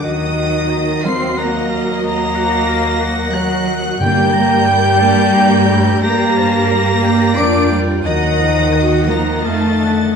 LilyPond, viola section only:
\new Staff \with { instrumentName = "Viola section" } { \time 3/4 \key ees \lydian \tempo 4 = 89 << { ges'2.~ | ges'2. | g'4 g'2~ | g'2 f'4 |
ges''4 ges'8 f8 ees'8 d8 | } \\ { ges2.~ | ges2. | bes8 bes8 g8 bes8 bes8 a8 | g4 g8 bes8 bes8 g8 |
ges8 f8 ees2 | } >> }